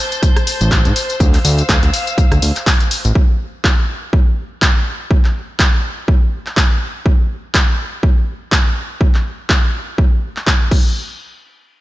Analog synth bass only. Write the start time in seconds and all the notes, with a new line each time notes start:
0.61 A1
0.85 A2
1.20 D2
1.45 D2
1.69 D2
1.83 D2
2.32 D2
2.42 D2
3.05 A1